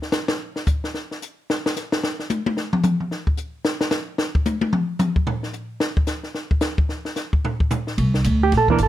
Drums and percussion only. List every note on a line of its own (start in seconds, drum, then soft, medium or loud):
0.02 snare soft
0.12 snare medium
0.12 hi-hat pedal medium
0.28 snare loud
0.56 snare medium
0.66 kick medium
0.66 hi-hat pedal medium
0.84 snare medium
0.94 snare soft
1.11 snare soft
1.22 hi-hat pedal medium
1.50 snare medium
1.66 snare loud
1.76 snare soft
1.76 hi-hat pedal medium
1.92 snare loud
2.03 snare loud
2.19 snare soft
2.30 hi-hat pedal medium
2.30 high tom medium
2.46 high tom loud
2.57 snare medium
2.73 mid tom loud
2.83 hi-hat pedal medium
2.83 mid tom loud
3.00 mid tom medium
3.11 snare soft
3.27 kick medium
3.37 hi-hat pedal medium
3.65 snare loud
3.81 snare loud
3.91 snare loud
3.91 hi-hat pedal medium
4.18 snare medium
4.35 kick medium
4.45 hi-hat pedal medium
4.45 high tom medium
4.61 high tom loud
4.73 mid tom loud
4.99 hi-hat pedal medium
4.99 mid tom loud
5.16 kick medium
5.27 floor tom loud
5.43 snare soft
5.53 hi-hat pedal medium
5.80 snare loud
5.97 kick medium
6.07 snare medium
6.07 hi-hat pedal medium
6.23 snare soft
6.35 snare medium
6.51 kick medium
6.61 snare loud
6.61 hi-hat pedal medium
6.78 kick medium
6.89 snare soft
7.05 snare soft
7.16 snare medium
7.16 hi-hat pedal medium
7.33 kick medium
7.45 floor tom loud
7.60 kick medium
7.70 floor tom loud
7.70 hi-hat pedal medium
7.87 snare soft
7.98 kick soft
7.98 ride medium
8.14 snare medium
8.24 kick soft
8.24 hi-hat pedal medium
8.24 ride medium
8.52 kick soft
8.52 snare soft
8.52 ride medium
8.68 kick medium
8.78 kick soft
8.78 hi-hat pedal medium
8.78 ride medium